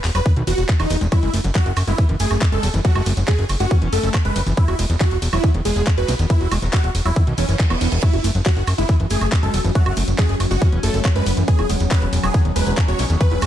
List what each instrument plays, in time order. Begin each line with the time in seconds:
0.04 analog synth bass E1, clap, open hi-hat, maracas
0.15 analog synth bass E1, acid bass F#3, supersaw synth B4, closed hi-hat, high woodblock, maracas
0.26 acid bass D#3, kick, closed hi-hat, maracas
0.36 analog synth bass B1, acid bass D#3, closed hi-hat
0.47 analog synth bass E1, acid bass E3, supersaw synth F#4, open hi-hat, maracas
0.58 analog synth bass E1, closed hi-hat, maracas
0.69 acid bass E3, kick, clap, closed hi-hat
0.80 analog synth bass E1, acid bass E3, supersaw synth D#4, closed hi-hat, high woodblock
0.90 analog synth bass E1, acid bass E3, open hi-hat, maracas
1.01 analog synth bass E1, acid bass G#3, closed hi-hat, maracas
1.12 acid bass F#3, supersaw synth E4, kick, closed hi-hat, ride, high woodblock, maracas
1.23 analog synth bass F#1, acid bass G#3, closed hi-hat
1.34 analog synth bass F#1, acid bass A3, open hi-hat, ride, maracas
1.44 analog synth bass F#1, acid bass F#3, closed hi-hat, maracas
1.55 acid bass F#3, supersaw synth F#4, kick, clap, closed hi-hat, maracas
1.66 analog synth bass F#1, closed hi-hat
1.76 analog synth bass F#1, open hi-hat, ride, high woodblock, maracas
1.87 analog synth bass F#1, acid bass G#3, wobble bass B3, supersaw synth E4, closed hi-hat, maracas
1.98 acid bass E3, wobble bass B3, kick, closed hi-hat, ride, maracas
2.09 analog synth bass F#1, acid bass E3, closed hi-hat
2.20 analog synth bass F#1, acid bass A3, supersaw synth G#4, open hi-hat, ride, maracas
2.31 analog synth bass F#1, closed hi-hat, high woodblock, maracas
2.41 acid bass C#4, kick, clap, closed hi-hat, maracas
2.52 analog synth bass F#1, acid bass G#3, supersaw synth A4, closed hi-hat
2.63 analog synth bass E1, acid bass F#3, open hi-hat, ride, maracas
2.73 analog synth bass F#1, acid bass E3, closed hi-hat, maracas
2.85 acid bass F#3, wobble bass A3, supersaw synth F#4, kick, closed hi-hat, ride, maracas
2.95 analog synth bass F#1, acid bass G#3, closed hi-hat, high woodblock
3.06 analog synth bass F#1, acid bass A3, open hi-hat, ride, maracas
3.17 analog synth bass F#1, acid bass F#3, closed hi-hat, maracas
3.27 acid bass F#3, supersaw synth G#4, kick, clap, closed hi-hat, ride, maracas
3.39 analog synth bass F#1, closed hi-hat
3.49 analog synth bass F#1, open hi-hat, ride, high woodblock, maracas
3.60 analog synth bass F#1, acid bass G#3, wobble bass C#4, supersaw synth F#4, closed hi-hat, maracas
3.71 acid bass E3, kick, closed hi-hat, ride, maracas
3.82 analog synth bass E1, acid bass E3, closed hi-hat
3.93 analog synth bass F#1, acid bass A3, supersaw synth A4, open hi-hat, ride, maracas
4.03 analog synth bass F#1, closed hi-hat, maracas
4.14 acid bass C#4, kick, clap, closed hi-hat, ride, high woodblock, maracas
4.25 analog synth bass F#1, acid bass G#3, supersaw synth B4, closed hi-hat
4.36 analog synth bass F#1, acid bass F#3, open hi-hat, ride, maracas
4.47 analog synth bass F#1, acid bass E3, closed hi-hat, maracas
4.57 acid bass E3, supersaw synth E4, kick, closed hi-hat, ride, maracas
4.68 analog synth bass E1, acid bass F#4, closed hi-hat, high woodblock
4.79 analog synth bass E1, acid bass G#3, open hi-hat, ride, maracas
4.89 analog synth bass E1, acid bass E3, closed hi-hat, maracas
5.00 acid bass E3, supersaw synth F#4, kick, clap, closed hi-hat, ride, maracas
5.11 analog synth bass E1, closed hi-hat
5.22 analog synth bass E1, open hi-hat, ride, maracas
5.33 analog synth bass E1, acid bass F#3, wobble bass B3, supersaw synth E4, closed hi-hat, high woodblock, maracas
5.44 acid bass D#3, wobble bass B3, kick, closed hi-hat, ride, maracas
5.54 analog synth bass E1, acid bass D#3, closed hi-hat
5.65 analog synth bass E1, acid bass G#3, supersaw synth G#4, open hi-hat, ride, maracas
5.76 analog synth bass E1, closed hi-hat, maracas
5.86 acid bass B3, kick, clap, closed hi-hat, ride, high woodblock, maracas
5.98 analog synth bass E1, acid bass F#4, supersaw synth B4, closed hi-hat
6.08 analog synth bass B1, acid bass E3, wobble bass B3, open hi-hat, ride, maracas
6.19 analog synth bass E1, acid bass D#3, wobble bass B3, closed hi-hat, maracas
6.30 acid bass E3, supersaw synth E4, kick, closed hi-hat, ride, maracas
6.41 analog synth bass E1, acid bass F#4, closed hi-hat
6.51 analog synth bass E1, acid bass G#3, open hi-hat, ride, high woodblock, maracas
6.62 analog synth bass E1, acid bass E3, wobble bass F#3, closed hi-hat, maracas
6.73 acid bass E3, wobble bass F#3, supersaw synth F#4, kick, clap, closed hi-hat, maracas
6.84 analog synth bass E1, closed hi-hat
6.95 analog synth bass E1, open hi-hat, ride, maracas
7.05 analog synth bass E1, acid bass F#3, supersaw synth E4, closed hi-hat, high woodblock, maracas
7.16 acid bass D#3, kick, closed hi-hat, ride, reverse cymbal, maracas
7.27 analog synth bass B1, acid bass D#3, closed hi-hat
7.38 analog synth bass E1, acid bass E3, supersaw synth C#4, open hi-hat, ride, maracas
7.49 analog synth bass F#1, acid bass E3, closed hi-hat, maracas
7.59 acid bass E3, kick, clap, closed hi-hat, ride, maracas
7.70 analog synth bass E1, acid bass E3, supersaw synth B3, closed hi-hat, high woodblock
7.81 analog synth bass E1, acid bass E3, open hi-hat, ride, maracas
7.92 analog synth bass E1, acid bass E3, closed hi-hat, maracas
8.03 acid bass F#3, synth drone F#3 C#4, supersaw synth E4, kick, closed hi-hat, ride, crash, high woodblock, maracas
8.13 analog synth bass F#1, acid bass F#4, closed hi-hat
8.24 analog synth bass F#1, acid bass A3, open hi-hat, ride, maracas
8.35 analog synth bass F#1, acid bass F#3, closed hi-hat, maracas
8.46 acid bass F#3, supersaw synth F#4, kick, clap, closed hi-hat, ride, maracas
8.57 analog synth bass F#1, closed hi-hat
8.67 analog synth bass F#1, open hi-hat, ride, high woodblock, maracas
8.78 analog synth bass F#1, acid bass G#3, wobble bass B3, supersaw synth E4, closed hi-hat, maracas
8.89 acid bass E3, wobble bass B3, kick, closed hi-hat, ride, maracas
9.00 analog synth bass F#1, acid bass E3, closed hi-hat
9.10 analog synth bass F#1, acid bass A3, supersaw synth G#4, open hi-hat, ride, maracas
9.21 analog synth bass F#1, closed hi-hat, high woodblock, maracas
9.32 acid bass C#4, kick, clap, closed hi-hat, ride, maracas
9.43 analog synth bass F#1, acid bass G#3, supersaw synth A4, closed hi-hat
9.54 analog synth bass E1, acid bass F#3, open hi-hat, ride, maracas
9.65 analog synth bass F#1, acid bass E3, closed hi-hat, maracas
9.75 acid bass F#3, wobble bass A3, supersaw synth F#4, kick, closed hi-hat, ride, maracas
9.86 analog synth bass F#1, acid bass F#4, closed hi-hat, high woodblock
9.97 analog synth bass F#1, acid bass A3, open hi-hat, ride, maracas
10.08 analog synth bass F#1, acid bass F#3, closed hi-hat, maracas
10.19 acid bass F#3, supersaw synth G#4, kick, clap, closed hi-hat, ride, maracas
10.29 analog synth bass F#1, closed hi-hat
10.40 analog synth bass F#1, open hi-hat, ride, high woodblock, maracas
10.51 analog synth bass F#1, acid bass G#3, wobble bass C#4, supersaw synth F#4, closed hi-hat, maracas
10.62 acid bass E3, kick, closed hi-hat, ride, maracas
10.72 analog synth bass E1, acid bass E3, closed hi-hat
10.83 analog synth bass F#1, acid bass A3, supersaw synth A4, open hi-hat, ride, maracas
10.94 analog synth bass F#1, closed hi-hat, maracas
11.05 acid bass C#4, kick, clap, closed hi-hat, high woodblock, maracas
11.16 analog synth bass F#1, acid bass G#3, supersaw synth B4, closed hi-hat
11.26 analog synth bass F#1, acid bass F#3, open hi-hat, ride, maracas
11.37 analog synth bass F#1, acid bass E3, closed hi-hat, maracas
11.48 acid bass E3, supersaw synth G#4, kick, closed hi-hat, ride, maracas
11.59 analog synth bass E1, acid bass E4, closed hi-hat, high woodblock
11.70 analog synth bass E1, acid bass G#3, open hi-hat, ride, maracas
11.80 analog synth bass E1, acid bass E3, closed hi-hat, maracas
11.91 acid bass E3, supersaw synth B4, kick, clap, closed hi-hat, maracas
12.02 analog synth bass E1, closed hi-hat
12.13 analog synth bass E1, open hi-hat, ride, maracas
12.23 analog synth bass E1, acid bass F#3, wobble bass B3, supersaw synth G#4, closed hi-hat, high woodblock, maracas
12.34 acid bass D#3, kick, closed hi-hat, ride, maracas
12.45 analog synth bass E1, acid bass D#3, closed hi-hat
12.56 analog synth bass E1, acid bass G#3, supersaw synth B4, open hi-hat, ride, maracas
12.66 analog synth bass E1, closed hi-hat, maracas
12.77 acid bass B3, kick, clap, closed hi-hat, ride, high woodblock, maracas
12.88 analog synth bass E1, acid bass F#4, supersaw synth C#5, closed hi-hat
12.99 analog synth bass B1, acid bass E3, wobble bass B3, open hi-hat, ride, maracas
13.10 analog synth bass E1, acid bass D#3, wobble bass B3, closed hi-hat, maracas
13.21 acid bass E3, supersaw synth B4, kick, closed hi-hat, ride, maracas
13.31 analog synth bass E1, acid bass E4, closed hi-hat
13.41 analog synth bass E1, acid bass G#3, open hi-hat, ride, high woodblock, maracas